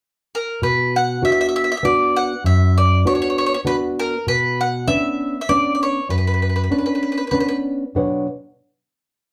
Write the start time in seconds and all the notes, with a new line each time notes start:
0.35 A#4
0.62 B2 B4
0.96 F#5
1.22 B3 D4 F#4 E5
1.32 E5
1.41 E5
1.49 E5
1.56 E5
1.64 E5
1.72 E5
1.77 E5
1.83 B3 D4 F#4 D5
2.16 F#5
2.44 F#2 E5
2.78 D5
3.05 B3 D4 F#4 C#5
3.15 C#5
3.22 C#5
3.30 C#5
3.38 C#5
3.46 C#5
3.54 C#5
3.65 B3 D4 F#4 B4
3.99 A#4
4.27 B2 B4
4.61 F#5
4.87 B3 C#4 D4 E5
5.41 E5
5.49 B3 C#4 D4 D5
5.75 D5
5.83 C#5
6.09 F#2 B4
6.18 B4
6.27 B4
6.34 B4
6.42 B4
6.49 B4
6.56 B4
6.64 B4
6.70 B3 C#4 D4 B4
6.78 B4
6.86 B4
6.95 B4
7.03 B4
7.12 B4
7.17 B4
7.27 B4
7.32 B3 C#4 D4
7.40 B4
7.48 B4
7.95 B2 F#3 D4 B4 C#5 F#5